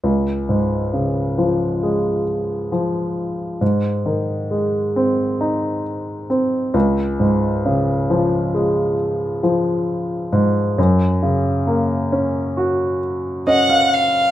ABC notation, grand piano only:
X:1
M:4/4
L:1/16
Q:1/4=67
K:Db
V:1 name="Grand piano"
z16 | z16 | z16 | z12 e f3 |]
V:2 name="Grand piano" clef=bass
D,,2 A,,2 D,2 F,2 A,4 F,4 | A,,2 E,2 A,2 C2 E4 C2 D,,2 | A,,2 D,2 F,2 A,4 F,4 A,,2 | G,,2 D,2 B,2 D2 G4 D4 |]